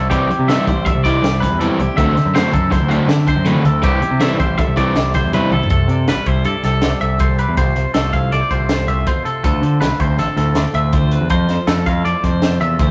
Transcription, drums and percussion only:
0.11 kick, closed hi-hat
0.31 closed hi-hat
0.49 snare, closed hi-hat
0.68 kick, closed hi-hat
0.86 kick, closed hi-hat
1.05 kick, snare, closed hi-hat
1.24 snare, closed hi-hat
1.42 kick, snare, closed hi-hat
1.61 closed hi-hat
1.80 closed hi-hat
1.98 kick, closed hi-hat
2.17 snare, closed hi-hat
2.35 snare, closed hi-hat
2.54 kick, closed hi-hat
2.72 kick, snare, closed hi-hat
2.91 closed hi-hat
3.09 snare, closed hi-hat
3.28 kick, closed hi-hat
3.46 closed hi-hat
3.65 closed hi-hat
3.83 kick, closed hi-hat
4.02 closed hi-hat
4.20 snare, closed hi-hat
4.40 kick, closed hi-hat
4.59 kick, closed hi-hat
4.77 kick, closed hi-hat
4.95 snare, closed hi-hat
5.14 kick, snare, closed hi-hat
5.33 closed hi-hat
5.52 high tom
5.63 floor tom
5.70 kick, closed hi-hat
5.89 closed hi-hat
6.08 snare, closed hi-hat
6.26 kick, closed hi-hat
6.45 closed hi-hat
6.64 snare, closed hi-hat
6.82 snare, closed hi-hat
7.01 closed hi-hat
7.19 kick, closed hi-hat
7.39 closed hi-hat
7.57 kick, closed hi-hat
7.76 closed hi-hat
7.94 snare, closed hi-hat
8.13 kick, closed hi-hat
8.32 closed hi-hat
8.51 kick, closed hi-hat
8.69 snare, closed hi-hat
8.88 closed hi-hat
9.07 kick, closed hi-hat
9.26 closed hi-hat
9.44 kick, closed hi-hat
9.63 closed hi-hat
9.81 snare, closed hi-hat
10.00 kick, closed hi-hat
10.19 snare, closed hi-hat
10.37 snare, closed hi-hat
10.55 snare, closed hi-hat
10.74 closed hi-hat
10.93 kick, closed hi-hat
11.11 closed hi-hat
11.30 kick, closed hi-hat
11.49 snare, closed hi-hat
11.67 snare, closed hi-hat
11.86 kick, closed hi-hat
12.05 closed hi-hat
12.24 kick, closed hi-hat
12.42 snare, closed hi-hat
12.61 closed hi-hat
12.79 kick, closed hi-hat

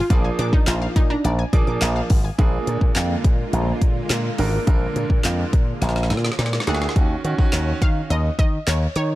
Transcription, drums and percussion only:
0.10 kick, closed hi-hat
0.39 closed hi-hat
0.53 kick
0.67 snare, clap, closed hi-hat
0.96 kick, closed hi-hat
1.25 closed hi-hat
1.53 kick, closed hi-hat
1.81 snare, clap, closed hi-hat
2.10 kick, open hi-hat
2.39 kick, closed hi-hat
2.67 closed hi-hat
2.81 kick
2.95 snare, clap, closed hi-hat
3.25 kick, closed hi-hat
3.53 closed hi-hat
3.82 kick, closed hi-hat
4.10 snare, clap, closed hi-hat
4.38 open hi-hat
4.67 kick, closed hi-hat
4.96 closed hi-hat
5.10 kick
5.24 snare, clap, closed hi-hat
5.53 kick, closed hi-hat
5.82 snare, closed hi-hat
5.89 snare
5.96 snare
6.03 snare
6.10 snare, closed hi-hat
6.17 snare
6.24 snare
6.32 snare
6.39 snare, closed hi-hat
6.46 snare
6.53 snare
6.60 snare
6.67 snare, closed hi-hat
6.74 snare
6.82 snare
6.89 snare
6.96 kick, closed hi-hat
7.25 closed hi-hat
7.38 kick
7.52 snare, clap, closed hi-hat
7.82 kick, closed hi-hat
8.10 closed hi-hat
8.39 kick, closed hi-hat
8.67 snare, clap, closed hi-hat
8.96 closed hi-hat

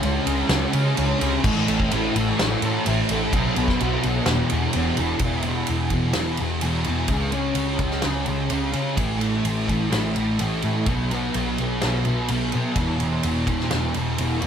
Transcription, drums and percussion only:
0.03 ride
0.27 ride
0.49 snare, ride
0.73 ride
0.97 ride
1.21 ride
1.44 kick, crash
1.68 ride
1.80 kick
1.91 ride
2.16 ride
2.39 snare, ride
2.62 ride
2.86 ride
3.09 ride
3.33 kick, ride
3.56 ride
3.68 kick, snare
3.80 ride
4.03 ride
4.26 snare, ride
4.50 ride
4.73 ride
4.97 ride
5.19 kick, ride
5.42 ride
5.67 ride
5.90 kick, ride
6.13 snare, ride
6.37 ride
6.61 ride
6.84 ride
7.08 kick, ride
7.32 ride
7.55 ride
7.79 kick, ride
7.91 snare
8.02 snare, ride
8.26 ride
8.50 ride
8.73 ride
8.97 kick, ride
9.21 ride
9.45 ride
9.68 kick, ride
9.92 snare, ride
10.16 ride
10.39 ride
10.62 ride
10.86 kick, ride
11.11 ride
11.34 ride
11.58 ride
11.82 snare, ride
12.05 ride
12.28 ride
12.52 ride
12.76 kick, ride
13.00 ride
13.23 ride
13.47 kick, ride
13.60 snare
13.71 snare, ride
13.94 ride
14.18 ride
14.42 ride

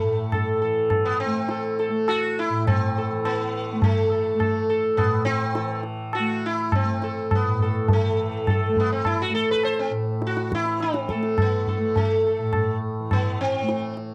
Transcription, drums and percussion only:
0.32 tabla na, tabla ge
0.90 tabla na, tabla ge
1.49 tabla te
1.79 tabla te
2.08 tabla na
2.67 tabla na, tabla ge
3.25 tabla na
3.82 tabla tin, tabla ge
4.40 tabla na, tabla ge
4.98 tabla na, tabla ge
5.26 tabla te
5.55 tabla te
5.83 tabla te
6.13 tabla na
6.72 tabla na, tabla ge
7.02 tabla te
7.31 tabla na, tabla ge
7.59 tabla ge
7.88 tabla tin, tabla ge
8.47 tabla na, tabla ge
8.76 tabla ge
9.05 tabla na, tabla ge
9.63 tabla na
10.22 tabla te
10.37 tabla te
10.52 tabla ke
10.66 tabla te
10.80 tabla te
10.94 tabla te
11.09 tabla ke
11.23 tabla te
11.38 tabla na, tabla ge
11.67 tabla ge
11.96 tabla tin, tabla ge
12.53 tabla na, tabla ge
13.11 tabla na, tabla ge
13.69 tabla te
13.97 tabla te

